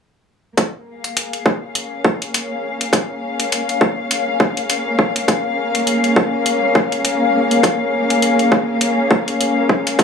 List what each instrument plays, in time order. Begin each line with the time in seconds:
0.57 string section A#3, kick, closed hi-hat
0.89 string section G#4
0.95 string section F5
1.04 closed hi-hat
1.17 closed hi-hat
1.33 closed hi-hat
1.46 kick
1.60 string section C#4
1.75 closed hi-hat
2.05 kick
2.22 closed hi-hat
2.34 closed hi-hat
2.81 closed hi-hat
2.93 kick, closed hi-hat
3.40 closed hi-hat
3.52 closed hi-hat
3.69 closed hi-hat
3.81 kick
4.11 closed hi-hat
4.40 kick
4.57 closed hi-hat
4.70 closed hi-hat
4.99 kick
5.16 closed hi-hat
5.28 kick, closed hi-hat
5.75 closed hi-hat
5.87 closed hi-hat
6.04 closed hi-hat
6.16 kick
6.46 closed hi-hat
6.75 kick
6.92 closed hi-hat
7.05 closed hi-hat
7.51 closed hi-hat
7.63 kick, closed hi-hat
8.10 closed hi-hat
8.22 closed hi-hat
8.39 closed hi-hat
8.52 kick
8.81 closed hi-hat
9.11 kick
9.28 closed hi-hat
9.41 closed hi-hat
9.69 kick
9.87 closed hi-hat
9.99 kick, closed hi-hat